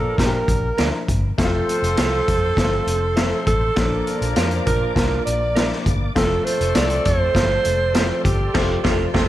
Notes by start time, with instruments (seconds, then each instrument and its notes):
Already playing: fingered electric bass A#2, horn section F3 A#3 D4 A#4, alto saxophone A4
0.17 fingered electric bass A#2, upright piano F3 A#3 D4 F#4, alto saxophone A#4, kick, snare, closed hi-hat
0.25 upright piano G4
0.48 fingered electric bass A#1, kick, closed hi-hat
0.78 fingered electric bass D2, upright piano F3 A#3 D4 D#4, clean electric guitar A#4 D5 F5, snare, closed hi-hat
0.85 upright piano E4
1.08 fingered electric bass G1, kick, closed hi-hat
1.38 fingered electric bass F1, upright piano F3 A3 C4 E4, horn section A3 C4 F4 C5, tonewheel organ A4 C5 C6, alto saxophone A4, kick, snare, closed hi-hat
1.45 upright piano F4
1.69 closed hi-hat
1.82 fingered electric bass F1, closed hi-hat
1.97 fingered electric bass C2, upright piano F3 A3 C4 F4, clean electric guitar A4 C5 F5, snare, closed hi-hat
2.28 fingered electric bass F2, kick, closed hi-hat
2.57 fingered electric bass G1, upright piano F3 A3 C4 E4, kick, snare, closed hi-hat
2.64 upright piano F4
2.87 fingered electric bass F1, closed hi-hat
3.16 upright piano F3 A3 C4 E4, clean electric guitar A4 C5 F5, snare, closed hi-hat
3.47 fingered electric bass A1, alto saxophone A4, kick, closed hi-hat
3.76 fingered electric bass A#1, upright piano F3 A#3 C#4 F4, horn section F3 A#3 D4 A#4, tonewheel organ A#3 D5 D6, kick, snare, closed hi-hat
3.83 upright piano D4
4.07 closed hi-hat
4.21 fingered electric bass A#1, closed hi-hat
4.36 fingered electric bass F2, upright piano F3 A#3 C#4 F4, clean electric guitar A#4 D5 F5, snare, closed hi-hat
4.43 upright piano D4
4.51 closed hi-hat
4.66 fingered electric bass A#2, alto saxophone A#4, kick, closed hi-hat
4.95 fingered electric bass C2, upright piano F3 A#3 D4 F4, alto saxophone A#4, kick, snare, closed hi-hat
5.25 fingered electric bass A#1, alto saxophone D5, closed hi-hat
5.55 upright piano F3 A#3 D4 E4, clean electric guitar A#4 D5 F5, snare, closed hi-hat
5.72 snare
5.86 fingered electric bass G1, kick, closed hi-hat
6.15 fingered electric bass F1, horn section F3 A3 C4 A4, upright piano F3 A3 C4 F4, tonewheel organ A4 C6, alto saxophone A4, kick, snare, closed hi-hat
6.44 alto saxophone C5, closed hi-hat
6.61 fingered electric bass F1, closed hi-hat
6.75 fingered electric bass C2, upright piano F3 G#3 C4 F4, clean electric guitar A4 C5 F5, alto saxophone D5, snare, closed hi-hat
6.82 upright piano A3
6.90 closed hi-hat
7.05 fingered electric bass F2, alto saxophone C5, kick, closed hi-hat
7.35 fingered electric bass G1, upright piano F3 G#3 C4 F4, kick, snare, closed hi-hat
7.42 upright piano A3
7.65 fingered electric bass F1, closed hi-hat
7.94 upright piano F3 A3 C4 F4, clean electric guitar A4 C5 F5, snare, closed hi-hat
8.24 fingered electric bass G1, alto saxophone G4, kick, closed hi-hat
8.54 fingered electric bass F1, horn section C3 F3 A3 F4, upright piano F3 A3 C4, clean electric guitar A4 C5 F5, kick, snare, crash
8.61 upright piano F4
8.84 fingered electric bass F1, horn section C3 F3 A3 F4, upright piano F3 A3 C4, clean electric guitar A4 C5 F5, kick, snare
8.91 upright piano F4
9.14 fingered electric bass F1, horn section C3 F3 A3 F4, upright piano F3 A3 C4 F4, clean electric guitar A4 C5 F5, kick, snare